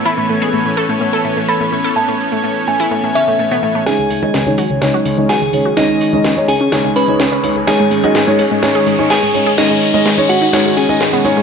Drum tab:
HH |----------------|----------------|xxoxxxoxxxoxxxox|xxoxxxoxxxoxxxox|
SD |----------------|----------------|o---o---o---o---|o---o---o---o---|

HH |xxoxxxoxxxoxxxox|xxo-xxoxxxoxxxox|
SD |o---o---o---o---|o---o---o---o---|